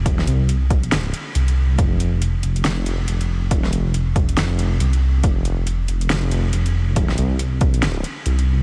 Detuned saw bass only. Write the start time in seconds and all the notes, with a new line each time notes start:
Already playing: F1
0.07 E1
0.27 C2
1.35 C2
1.78 F1
2.43 F1
3.08 F1
3.53 E1
3.72 F1
4.17 E1
4.37 F1
4.80 C2
5.24 F1
5.88 F1
6.53 F1
7.18 C2
8.26 C2